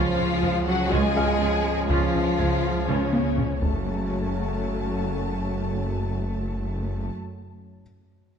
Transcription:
0.00 3.61 C#2 loud
0.00 3.42 C#3 loud
0.00 0.63 F3 loud
0.00 3.42 F3 loud
0.00 3.62 F3 loud
0.00 0.16 C#4 loud
0.00 3.59 C#4 loud
0.00 0.16 F4 loud
0.00 0.63 F4 loud
0.00 3.63 G#4 medium
0.00 3.58 C#5 medium
0.00 0.63 F5 loud
0.00 0.87 B5 loud
0.17 0.27 C#2 medium
0.17 0.25 G#3 medium
0.17 0.25 C#4 medium
0.17 0.33 C#4 medium
0.17 taiko rim soft
0.42 0.51 C#2 medium
0.42 0.50 F3 medium
0.42 0.50 G#3 loud
0.42 0.58 G#3 medium
0.42 taiko low medium
0.67 0.92 F#3 loud
0.67 0.92 F#4 loud
0.67 0.91 F#5 loud
0.90 1.00 C#2 loud
0.90 1.07 C#3 loud
0.90 1.90 G#3 loud
0.90 1.14 C#4 loud
0.90 1.14 F4 loud
0.90 1.90 G#4 loud
0.90 1.90 G#5 loud
1.16 1.25 C#2 loud
1.16 1.31 F3 medium
1.16 1.24 G#3 loud
1.16 1.24 C#4 loud
1.16 2.60 F5 medium
1.16 2.60 F6 loud
1.16 taiko rim soft
1.40 1.49 C#2 medium
1.40 1.48 F3 loud
1.40 1.48 G#3 medium
1.40 1.56 C#4 loud
1.89 1.98 C#2 loud
1.89 2.05 C#3 loud
1.89 2.86 F3 loud
1.89 2.13 C#4 loud
1.89 2.13 F4 loud
1.89 2.86 F4 loud
1.89 2.86 F5 loud
1.89 taiko loud
2.15 2.23 C#2 medium
2.15 2.23 G#3 medium
2.15 2.30 C#4 medium
2.15 2.23 C#4 medium
2.39 2.48 C#2 medium
2.39 2.48 F3 medium
2.39 2.47 G#3 medium
2.39 2.54 G#3 medium
2.39 3.83 G#6 medium
2.39 taiko low medium
2.64 taiko rim soft
2.88 2.96 C#2 loud
2.88 3.61 C#3 medium
2.88 3.03 C#3 loud
2.88 3.63 C#3 loud
2.88 3.11 C#4 loud
2.88 3.62 C#4 loud
2.88 3.11 F4 loud
2.88 3.62 C#5 loud
3.12 3.21 C#2 medium
3.12 3.28 F3 medium
3.12 3.20 G#3 medium
3.12 3.20 C#4 medium
3.12 taiko high loud
3.37 3.45 C#2 medium
3.37 3.45 F3 medium
3.37 3.45 G#3 medium
3.37 3.52 C#4 medium
3.37 taiko low-mid medium
3.59 7.10 F#1 medium
3.59 7.11 F#2 medium
3.59 7.08 C#3 medium
3.59 7.08 F#3 medium
3.59 7.11 F#3 medium
3.59 7.10 A3 medium
3.59 7.11 C#4 medium
3.59 7.10 F#4 medium
3.59 7.11 F#4 medium
3.59 7.10 A4 loud
3.59 7.11 C#5 medium
3.59 7.10 A5 medium
3.59 taiko loud

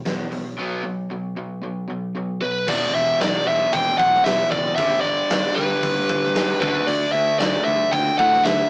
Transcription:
0.05 0.27 E2 medium
0.05 0.29 E2 medium
0.05 0.29 B2 medium
0.05 snare loud
0.05 open hi-hat medium
0.32 0.53 B1 medium
0.32 0.56 E2 medium
0.32 0.56 B2 medium
0.32 open hi-hat soft
0.59 0.82 B2 medium
0.59 0.83 F#3 medium
0.59 0.83 B3 loud
0.84 1.08 B2 medium
0.84 1.08 F#3 medium
1.11 1.35 B2 medium
1.11 1.35 F#3 medium
1.36 1.60 B2 medium
1.36 1.61 F#3 medium
1.62 1.86 B2 medium
1.62 1.87 F#3 medium
1.88 2.12 B2 medium
1.88 2.12 F#3 medium
2.15 2.39 B2 medium
2.15 2.39 F#3 medium
2.42 2.66 B2 medium
2.42 2.66 F#3 medium
2.42 2.66 B4 medium
2.67 2.85 E1 medium
2.67 3.45 E2 loud
2.67 3.46 B2 loud
2.67 3.46 E3 loud
2.67 2.94 D5 medium
2.67 kick loud
2.67 crash loud
2.95 3.12 E1 medium
2.95 3.21 E5 medium
3.21 3.38 E1 medium
3.21 3.47 D5 medium
3.21 snare loud
3.21 open hi-hat medium
3.47 3.64 E1 medium
3.47 4.25 E2 medium
3.47 4.25 B2 medium
3.47 4.24 E3 medium
3.47 3.74 E5 medium
3.73 3.90 E1 medium
3.73 3.97 G5 medium
3.73 kick loud
3.73 open hi-hat medium
3.98 4.17 B1 medium
3.98 4.23 F#5 medium
3.98 kick medium
4.14 snare soft
4.24 4.43 E1 medium
4.24 4.77 E2 medium
4.24 4.78 B2 medium
4.24 4.51 E5 medium
4.24 snare loud
4.24 open hi-hat medium
4.29 4.78 E3 medium
4.51 4.69 F#1 loud
4.51 4.75 D5 medium
4.51 kick medium
4.76 4.95 G1 medium
4.76 5.55 G2 medium
4.76 5.56 D3 loud
4.76 5.00 E5 medium
4.76 kick loud
4.76 open hi-hat medium
4.81 5.56 G3 loud
5.01 5.21 G1 medium
5.01 5.56 D5 loud
5.30 5.48 G1 medium
5.30 snare loud
5.30 open hi-hat medium
5.55 5.74 G1 medium
5.55 6.34 G3 loud
5.55 6.59 B4 medium
5.59 6.35 G2 medium
5.59 6.35 D3 medium
5.83 6.00 G1 loud
5.83 kick medium
5.83 open hi-hat medium
6.09 6.27 G1 medium
6.09 kick medium
6.24 snare soft
6.35 6.52 G1 medium
6.35 6.60 G2 medium
6.35 6.61 D3 medium
6.35 6.61 G3 medium
6.35 snare loud
6.35 open hi-hat medium
6.61 6.79 D2 medium
6.61 7.39 D3 medium
6.61 7.39 A3 medium
6.61 7.40 D4 medium
6.61 6.85 B4 medium
6.61 kick loud
6.87 7.05 D2 medium
6.87 7.12 D5 loud
6.87 open hi-hat medium
7.12 7.31 D2 medium
7.12 7.39 E5 medium
7.39 7.57 D2 loud
7.39 8.17 D3 medium
7.39 8.18 A3 medium
7.39 8.17 D4 medium
7.39 7.64 D5 loud
7.39 snare loud
7.39 open hi-hat medium
7.64 7.84 D2 medium
7.64 7.92 E5 medium
7.92 8.10 D2 loud
7.92 8.18 G5 medium
7.92 kick medium
7.92 open hi-hat medium
8.18 8.36 A2 medium
8.18 8.70 D3 medium
8.18 8.70 A3 medium
8.18 8.69 D4 medium
8.18 8.45 F#5 loud
8.18 kick medium
8.33 snare soft
8.44 8.62 D2 medium
8.44 8.70 E5 loud
8.44 snare loud
8.44 open hi-hat medium

